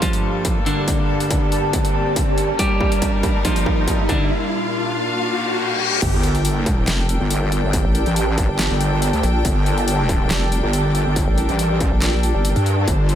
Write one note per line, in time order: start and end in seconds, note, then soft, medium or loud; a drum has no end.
0.00 2.56 G2 medium
0.00 0.58 F3 medium
0.00 2.56 G3 medium
0.00 0.54 A#3 medium
0.00 5.98 A#3 medium
0.00 2.56 D4 medium
0.00 0.58 F4 medium
0.00 3.28 G4 medium
0.00 2.56 A4 medium
0.00 3.28 D5 medium
0.00 3.28 A5 medium
0.00 kick loud
0.00 closed hi-hat medium
0.00 riser medium
0.13 closed hi-hat soft
0.45 kick loud
0.45 closed hi-hat medium
0.66 2.51 D3 medium
0.66 2.51 D4 medium
0.66 closed hi-hat medium
0.88 kick loud
0.88 closed hi-hat medium
1.20 closed hi-hat medium
1.31 kick loud
1.31 closed hi-hat medium
1.52 closed hi-hat medium
1.73 kick loud
1.73 closed hi-hat medium
1.85 closed hi-hat medium
2.16 kick loud
2.16 closed hi-hat medium
2.38 closed hi-hat medium
2.59 4.29 G2 medium
2.59 3.37 G3 medium
2.59 4.29 G3 medium
2.59 4.31 G3 medium
2.59 4.29 D#4 medium
2.59 3.37 G4 medium
2.59 4.29 A#4 loud
2.59 kick loud
2.59 closed hi-hat medium
2.80 kick loud
2.92 closed hi-hat medium
3.02 kick loud
3.02 closed hi-hat medium
3.06 4.31 D#4 medium
3.06 4.31 F5 medium
3.23 kick loud
3.23 closed hi-hat medium
3.45 4.01 F3 medium
3.45 4.01 F4 medium
3.45 kick loud
3.45 closed hi-hat medium
3.56 closed hi-hat medium
3.66 kick loud
3.88 kick loud
3.88 closed hi-hat medium
4.09 4.30 D3 medium
4.09 4.30 D4 medium
4.09 kick loud
4.09 closed hi-hat medium
4.30 6.00 A#2 medium
4.30 6.00 D4 medium
4.30 6.00 F4 medium
4.30 6.00 F5 loud
5.16 reverse cymbal medium
6.02 6.86 G1 loud
6.02 13.15 G3 medium
6.02 13.15 D4 medium
6.02 13.15 G4 medium
6.02 13.15 A4 medium
6.02 13.15 A#4 medium
6.02 12.86 G5 medium
6.02 kick loud
6.02 closed hi-hat medium
6.02 crash loud
6.02 sub drop medium
6.15 13.15 D5 medium
6.23 closed hi-hat medium
6.35 closed hi-hat soft
6.40 13.15 A5 medium
6.45 closed hi-hat medium
6.66 kick loud
6.66 closed hi-hat medium
6.88 7.19 F1 loud
6.88 snare loud
6.88 clap medium
6.88 closed hi-hat medium
7.09 closed hi-hat medium
7.20 7.61 G1 loud
7.30 closed hi-hat medium
7.52 closed hi-hat medium
7.63 7.83 G1 medium
7.73 kick loud
7.73 closed hi-hat medium
7.85 8.04 A1 loud
7.95 closed hi-hat medium
8.06 8.47 A1 medium
8.06 closed hi-hat soft
8.16 closed hi-hat medium
8.38 kick loud
8.38 closed hi-hat medium
8.49 8.69 G1 loud
8.59 snare loud
8.59 clap loud
8.59 closed hi-hat medium
8.70 9.11 G1 loud
8.81 closed hi-hat medium
9.02 closed hi-hat medium
9.13 9.22 D2 medium
9.13 closed hi-hat soft
9.23 9.43 A#1 loud
9.23 closed hi-hat medium
9.45 10.29 G1 loud
9.45 kick loud
9.45 closed hi-hat medium
9.66 closed hi-hat soft
9.78 closed hi-hat soft
9.88 closed hi-hat medium
10.09 kick loud
10.09 closed hi-hat medium
10.30 10.61 F1 loud
10.30 snare loud
10.30 clap medium
10.30 closed hi-hat medium
10.52 closed hi-hat medium
10.63 11.04 G1 medium
10.73 closed hi-hat medium
10.95 closed hi-hat medium
11.06 11.26 G1 loud
11.16 kick loud
11.16 closed hi-hat medium
11.28 11.47 A1 loud
11.38 closed hi-hat medium
11.49 11.90 A1 loud
11.49 closed hi-hat soft
11.59 closed hi-hat medium
11.80 kick loud
11.80 closed hi-hat medium
11.92 12.33 A#1 loud
12.02 snare loud
12.02 clap medium
12.02 closed hi-hat medium
12.23 closed hi-hat medium
12.35 12.54 G1 loud
12.45 closed hi-hat medium
12.56 12.86 G2 medium
12.56 closed hi-hat soft
12.66 closed hi-hat soft
12.88 13.15 G1 loud
12.88 13.15 C5 loud
12.88 kick loud
12.88 closed hi-hat medium
13.09 closed hi-hat soft